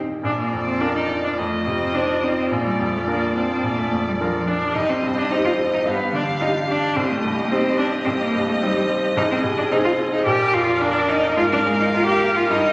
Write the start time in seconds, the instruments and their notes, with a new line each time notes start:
Already playing: grand piano A#2 A#3 D#4 G4
0.23 grand piano A#1, cello D4, viola F4, violin D5
0.38 cello A#3
0.53 grand piano F2
0.67 cello C4
0.81 cello D4, grand piano D4 F4 A#4
0.95 cello D#4
1.10 grand piano D4
1.24 cello D4
1.38 grand piano F2, cello A3, violin D#5
1.66 grand piano C3, cello C4
1.94 cello D4, grand piano D#4 F4 C5
2.23 cello C4, grand piano D#4
2.51 grand piano A#1, cello A#3, violin D5
2.64 cello G3
2.79 grand piano F2
2.96 cello A3
3.07 cello A#3, grand piano D4 F4 A#4
3.35 cello C4, grand piano D4
3.63 grand piano A#1, cello A#3
3.78 cello A3
3.92 grand piano F2
4.07 cello G3
4.20 cello F3, grand piano D4 F4 A#4
4.34 cello F3
4.47 cello D4, grand piano D4
4.73 grand piano C2, cello D#4, viola G4, violin D#5
4.90 cello C4
5.03 grand piano G2
5.17 cello D4
5.31 grand piano C4 D#4 G4, cello D#4
5.44 cello F4
5.57 grand piano C4
5.74 cello D#4
5.85 grand piano G2, cello B3, violin F5
6.13 grand piano D3, cello D4
6.40 grand piano D4 F4 G4, cello D#4
6.68 grand piano D4, cello D4
6.96 grand piano C2, cello C4, violin D#5
7.10 cello A3
7.24 grand piano G2
7.39 cello A#3
7.51 cello C4, grand piano C4 D#4 G4
7.78 grand piano C4, cello D4
8.05 grand piano C2, cello C4
8.19 cello A#3
8.34 grand piano G2
8.47 cello A3
8.62 cello G3, grand piano C4 D#4 G4
8.76 cello G3
8.90 grand piano C4
9.16 grand piano C2, cello D#4, viola G#4
9.31 cello C4
9.43 grand piano C3
9.58 cello D4
9.71 grand piano C4 D#4 G#4, cello D#4
9.84 cello F4
9.98 grand piano C4
10.13 cello D#4
10.25 grand piano A#1, cello G4, viola A#4, violin D5
10.53 grand piano F2, cello F4
10.81 cello D4, grand piano D4 F4 A#4
11.09 grand piano D4, cello D#4
11.37 grand piano G#2, cello F4, violin F5
11.52 cello D4
11.66 grand piano G#3
11.81 cello D#4
11.95 grand piano A#3 F4 A#4, cello F4
12.06 cello G4
12.22 grand piano A#3
12.36 cello F4
12.49 grand piano G2, cello D#4, violin D#5